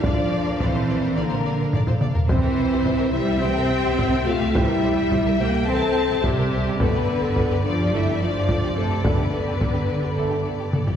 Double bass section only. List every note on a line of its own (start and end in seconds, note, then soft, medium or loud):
0.04 0.09 A#1 medium
0.18 0.24 A#1 soft
0.32 0.38 A#1 soft
0.46 0.52 A#1 soft
0.60 0.66 A#1 medium
0.75 0.80 A#1 soft
0.88 0.94 A#1 soft
1.02 1.08 A#1 soft
1.16 1.22 A#1 medium
1.31 1.36 A#1 soft
1.45 1.51 A#1 soft
1.59 1.65 A#1 soft
1.73 1.79 A#1 medium
1.87 1.93 A#1 soft
2.01 2.07 A#1 soft
2.15 2.21 A#1 soft
2.30 2.35 C2 medium
2.44 2.50 C2 soft
2.58 2.64 C2 soft
2.72 2.78 C2 soft
2.86 2.91 C2 medium
3.00 3.05 C2 soft
3.14 3.20 C2 medium
3.28 3.34 C2 medium
3.42 3.48 C2 medium
3.56 3.62 C2 soft
3.70 3.76 C2 soft
3.84 3.90 C2 soft
3.99 4.04 C2 medium
4.12 4.18 C2 soft
4.26 4.32 C2 soft
4.40 4.46 C2 soft
4.54 4.60 C2 medium
4.69 4.74 C2 soft
4.83 4.89 C2 soft
4.97 5.03 C2 soft
5.11 5.17 C2 medium
5.25 5.31 C2 soft
5.40 5.45 C2 medium
5.54 5.59 C2 soft
5.68 5.73 C2 medium
5.82 5.88 C2 soft
5.96 6.01 C2 soft
6.11 6.16 C2 soft
6.24 6.30 C2 medium
6.38 6.44 C2 soft
6.52 6.58 C2 soft
6.66 6.72 C2 soft
6.80 6.85 G1 medium
6.94 7.00 G1 soft
7.07 7.13 G1 soft
7.22 7.28 G1 soft
7.36 7.42 G1 medium
7.50 7.56 G1 soft
7.65 7.70 G1 soft
7.79 7.84 G1 soft
7.93 7.98 G1 medium
8.06 8.12 G1 soft
8.20 8.26 G1 soft
8.34 8.40 G1 soft
8.49 8.55 G1 medium
8.63 8.68 G1 soft
8.77 8.83 G1 soft
8.91 8.97 G1 soft
9.05 9.11 G1 medium
9.19 9.25 G1 soft
9.33 9.39 G1 soft
9.47 9.53 G1 soft
9.61 9.67 G1 medium
9.76 9.81 G1 soft
9.89 9.95 G1 soft
10.04 10.09 G1 soft
10.18 10.23 G1 medium
10.31 10.37 G1 soft
10.45 10.51 G1 soft
10.60 10.65 G1 soft
10.73 10.79 G1 soft
10.88 10.94 G1 soft